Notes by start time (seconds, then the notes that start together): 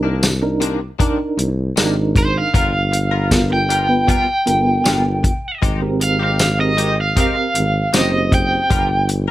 Already playing: C2 D4 D#4 A#4
0.03 D#3 A#3 D4
0.23 snare, closed hi-hat, tambourine
0.42 D4 D#4 A#4, muted clean electric guitar stroke
0.60 C3 D#3 A#3 D4, closed hi-hat
0.80 muted clean electric guitar stroke
0.99 C3 D#3 A#3 D4 D#4 A#4, kick, closed hi-hat
1.38 C2, muted clean electric guitar stroke, closed hi-hat
1.76 G#1 C3 D#3 A#3 D4 D#4 A#4, snare, closed hi-hat, tambourine
1.96 muted clean electric guitar stroke
2.15 C5, muted clean electric guitar stroke, kick, closed hi-hat
2.38 F5
2.54 G1 G3 B3 F4 A#4, kick, closed hi-hat
2.73 muted clean electric guitar stroke
2.92 muted clean electric guitar stroke, closed hi-hat
3.11 B3 F4 A#4
3.31 B3 F4 A#4, kick, snare, closed hi-hat, tambourine
3.50 G5, muted clean electric guitar stroke
3.69 G3 B3 F4 A#4, closed hi-hat
3.89 B3 F4 B4, muted clean electric guitar stroke
4.07 G3 B3 F4 A#4 G5, kick, closed hi-hat
4.27 muted clean electric guitar stroke
4.46 G1 B3 F4 A#4, muted clean electric guitar stroke, closed hi-hat
4.84 G1 G3 B3 F4 A#4, snare, closed hi-hat, tambourine
5.04 muted clean electric guitar stroke
5.23 muted clean electric guitar stroke, kick, closed hi-hat
5.62 G#1 G#3 C4 D#4 G4, kick, closed hi-hat
5.82 C4 G4 A#4, muted clean electric guitar stroke
6.00 F5, muted clean electric guitar stroke, closed hi-hat
6.19 C4 D#4 G4
6.23 F5
6.39 snare, closed hi-hat, tambourine
6.59 C4 G4 A#4 D#5, muted clean electric guitar stroke
6.77 G#3 C4 D#4 G4, closed hi-hat
6.97 F5, muted clean electric guitar stroke
7.16 G#3 C4 D#4 G4 A#4, kick, closed hi-hat
7.20 F5
7.36 muted clean electric guitar stroke
7.55 G#1, muted clean electric guitar stroke, closed hi-hat
7.93 F#1 G#3 C4 D#4 G4 C5, snare, closed hi-hat, tambourine
7.97 D#5
8.13 muted clean electric guitar stroke
8.31 G5, muted clean electric guitar stroke, kick, closed hi-hat
8.70 G1 G3 B3 F4 A#4, kick, closed hi-hat
9.09 muted clean electric guitar stroke, closed hi-hat
9.28 A#4